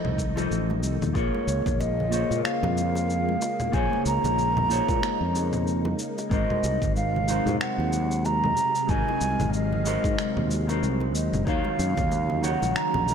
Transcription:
Already playing: string machine D#3 A3 D#4, clean electric guitar F3 F4 A4 C5 D#5, flute D#5
0.05 fretless electric bass C2, low conga
0.18 kick, high conga, cabasa
0.35 clean electric guitar F3 F4 A4 C5 D#5, high bongo, cabasa
0.51 fretless electric bass A1, cabasa
0.70 high bongo, high conga
0.83 fretless electric bass C2, cabasa
1.01 fretless electric bass D#2, low conga, cabasa
1.13 fretless electric bass A#1, string machine C#3 G#3 A#3 F4, clean electric guitar A#3 F4 G#4 A#4 C#5, flute C#5, kick, cabasa
1.34 high bongo, high conga
1.47 fretless electric bass C#2, cabasa
1.66 fretless electric bass A#1, kick, low conga, cabasa
1.80 flute D#5, high bongo, high conga, cabasa
2.00 low conga
2.11 clean electric guitar A#3 F4 G#4 C5 C#5, high bongo, cabasa
2.31 fretless electric bass A#2, high conga, cabasa
2.44 flute F5, finger snap, cabasa
2.63 fretless electric bass F2, high bongo, low conga
2.77 high conga, cabasa
2.95 high bongo, cabasa
3.10 cabasa
3.29 high conga
3.42 high bongo, cabasa
3.60 low conga, cabasa
3.72 fretless electric bass A#1, clean electric guitar A#3 F4 G#4 C5 C#5, string machine D#4, flute G#5, kick, high bongo, cabasa
3.93 high conga
4.06 fretless electric bass C#2, flute A#5, cabasa
4.24 fretless electric bass A#1, high bongo, low conga, cabasa
4.38 high conga, cabasa
4.57 high bongo, low conga
4.69 clean electric guitar A#3 F4 G#4 C5 C#5, cabasa
4.89 fretless electric bass A#2, kick, high conga, cabasa
5.03 finger snap, high bongo, cabasa
5.21 fretless electric bass F2
5.35 high bongo, high conga, cabasa
5.53 low conga, cabasa
5.67 cabasa
5.85 high bongo, high conga
5.99 cabasa
6.18 high bongo, cabasa
6.30 fretless electric bass G#1, string machine C3 F#3 G#3, clean electric guitar G#3 D#4 F#4 A#4 C5, flute D#5, kick, cabasa
6.50 high conga, low conga
6.64 fretless electric bass C2, high bongo, cabasa
6.82 fretless electric bass G#1, kick, low conga, cabasa
6.96 flute F5, high bongo, high conga, cabasa
7.16 low conga
7.27 clean electric guitar G#3 D#4 F#4 A#4 C5, cabasa
7.46 fretless electric bass G#2, high bongo, high conga, low conga, cabasa
7.61 flute F#5, finger snap, cabasa
7.78 fretless electric bass D#2, high bongo
7.93 high conga, cabasa
8.11 cabasa
8.25 flute A#5, high bongo, cabasa
8.44 high conga, low conga
8.57 high bongo, cabasa
8.75 cabasa
8.87 fretless electric bass G#1, clean electric guitar G#3 D#4 F#4 A#4 D#5, string machine F5, flute G#5, kick, cabasa
9.08 high bongo, high conga
9.21 fretless electric bass C2, cabasa
9.40 fretless electric bass G#1, high bongo, low conga, cabasa
9.53 flute D#5, high conga, cabasa
9.73 low conga
9.84 clean electric guitar G#3 D#4 F#4 A#4 C5, high bongo, cabasa
10.04 fretless electric bass G#2, kick, high conga, cabasa
10.18 finger snap, high bongo, cabasa
10.37 fretless electric bass D#2, low conga
10.51 high conga, cabasa
10.67 clean electric guitar G#3 D#4 F#4 A#4 C5, high bongo, cabasa
10.83 fretless electric bass C2, cabasa
11.00 high bongo, high conga
11.15 fretless electric bass D#2, flute D#5, cabasa
11.33 fretless electric bass F#1, low conga, cabasa
11.45 fretless electric bass D#2, string machine C#3 A#3 D#4, clean electric guitar D#3 D#4 F#4 C#5 F5, flute F5, kick, cabasa
11.64 high bongo, high conga
11.79 fretless electric bass F#2, cabasa
11.97 fretless electric bass D#2, kick, low conga, cabasa
12.11 high bongo, high conga, cabasa
12.30 low conga
12.41 clean electric guitar D#3 D#4 F#4 C#5 F#5, flute F#5, high bongo, cabasa
12.62 fretless electric bass A#1, high conga, cabasa
12.76 flute A#5, finger snap, cabasa
12.94 fretless electric bass A#1, high bongo, low conga
13.08 high conga, cabasa

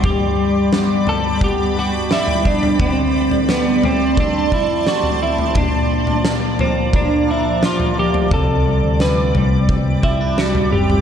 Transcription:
Already playing: clean electric guitar G3 C4 D4, ambient pad G3 D5
0.03 clean electric guitar G2 G4, ambient pad B5 D6, kick, floor tom
0.38 clean electric guitar G3
0.72 clean electric guitar B3, snare
1.07 clean electric guitar G3 A4, floor tom
1.41 clean electric guitar B3 G4, kick, floor tom
1.76 clean electric guitar D4 F#4
2.10 clean electric guitar G3 E4, snare
2.27 floor tom
2.45 clean electric guitar B3 D4, kick
2.63 floor tom
2.79 clean electric guitar D3 C4, ambient pad A5 C6, kick, floor tom
3.14 clean electric guitar A3
3.31 floor tom
3.49 clean electric guitar B3, snare
3.83 clean electric guitar A3 C4, floor tom
4.17 clean electric guitar C4 D4, kick, floor tom
4.52 clean electric guitar E4, kick
4.87 clean electric guitar A3 F#4, snare
5.03 floor tom
5.22 clean electric guitar C4 E4
5.38 floor tom
5.55 clean electric guitar A#2 D4, ambient pad F3 A#5 D6, kick, floor tom
5.90 clean electric guitar F3
6.07 floor tom
6.25 clean electric guitar A#3, snare
6.59 clean electric guitar F3 C4, floor tom
6.93 clean electric guitar A#3 D4, kick, floor tom
7.28 clean electric guitar D4 E4
7.63 clean electric guitar F3 F4, snare
7.80 floor tom
7.97 clean electric guitar A#3 G4
8.14 floor tom
8.31 picked electric bass C2, clean electric guitar C3 A4, ambient pad G3, kick, floor tom
8.66 clean electric guitar G3
8.83 picked electric bass D2
9.00 clean electric guitar C4 B4, snare
9.35 picked electric bass C2, clean electric guitar G3, floor tom
9.69 picked electric bass C2, clean electric guitar C4, kick, floor tom
10.03 clean electric guitar C4 E4, kick
10.21 clean electric guitar D4
10.38 clean electric guitar G3 F#4, snare
10.55 floor tom
10.72 picked electric bass F#1, clean electric guitar C4 G4
10.90 floor tom

